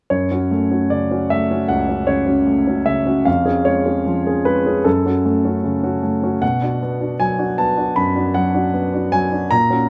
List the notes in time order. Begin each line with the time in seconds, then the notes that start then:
0.10 F#2 C#5
0.31 C#4 F#4
0.51 A3
0.71 C#4 F#4
0.90 C#3 D5
1.11 C#4 F#4
1.30 A3 E5
1.51 C#4 F#4
1.68 C#2 F#5
1.89 C#4 F#4
2.07 C#3 C#5
2.27 C#4 F#4
2.47 A3
2.67 C#4 F#4
2.86 C#3 E5
3.06 C#4 F#4
3.25 F2 F5
3.45 C#4 G#4
3.65 G#3 C#5
3.85 C#4 G#4
4.07 F3
4.27 C#4 G#4
4.45 G#3 B4
4.66 C#4 G#4
4.84 F#2 A4
5.06 C#4 F#4
5.25 A3
5.45 C#4 F#4
5.64 C#3
5.83 C#4 F#4
6.03 A3
6.23 C#4 F#4
6.42 B2 F#5
6.62 D4 F#4
6.82 B3
7.01 D4 F#4
7.20 F#3 G#5
7.39 D4 F#4
7.58 B3 A5
7.77 D4 F#4
7.96 F#2 B5
8.16 D4 F#4
8.34 F#3 F#5
8.54 D4 F#4
8.74 B3
8.93 D4 F#4
9.12 F#3 G#5
9.32 D4 F#4
9.51 A#2 A#5
9.70 C#4 F#4